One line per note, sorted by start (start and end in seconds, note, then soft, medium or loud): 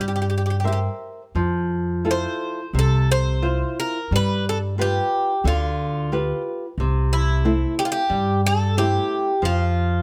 0.00 0.86 G2 medium
0.00 0.62 G3 medium
0.00 0.04 G4 soft
0.08 0.11 G4 soft
0.16 0.19 G4 soft
0.22 0.25 G4 soft
0.30 0.33 G4 soft
0.38 0.41 G4 soft
0.46 0.49 G4 soft
0.50 0.55 G4 soft
0.60 0.64 G4 soft
0.64 0.71 G4 soft
0.64 1.21 A#4 soft
0.64 1.21 C5 soft
0.64 1.22 E5 soft
0.73 0.78 G4 soft
1.35 2.25 F2 medium
1.35 2.03 F3 soft
2.05 2.59 E4 soft
2.05 2.60 F4 soft
2.05 2.60 A4 soft
2.11 2.78 C5 medium
2.73 3.62 C2 medium
2.73 3.40 C3 medium
2.79 3.11 A4 medium
3.12 3.79 C5 medium
3.42 3.97 E4 soft
3.42 3.97 F4 soft
3.42 3.97 C5 soft
3.80 4.13 A#4 medium
4.11 4.98 G2 medium
4.11 4.76 G3 medium
4.16 4.44 B4 medium
4.49 4.57 A4 medium
4.78 5.31 F4 soft
4.78 5.31 G4 soft
4.78 5.47 G4 medium
4.78 5.32 B4 soft
5.44 6.31 D2 medium
5.44 6.09 D3 medium
5.44 6.41 F4 medium
6.12 6.65 F4 soft
6.12 6.65 G4 soft
6.12 6.65 B4 soft
6.78 7.64 C2 medium
6.78 7.43 C3 medium
7.13 7.74 E4 medium
7.45 7.98 A3 soft
7.45 7.97 C4 soft
7.45 7.98 E4 soft
7.79 7.84 G4 medium
7.85 7.91 F4 medium
7.92 8.40 G4 medium
8.10 8.96 G2 medium
8.10 8.74 G3 medium
8.46 8.78 A4 medium
8.77 9.30 A3 soft
8.77 9.30 C4 soft
8.77 9.30 E4 soft
8.77 9.45 G4 medium
9.42 10.02 F2 medium
9.42 10.02 F3 medium
9.42 10.02 F4 medium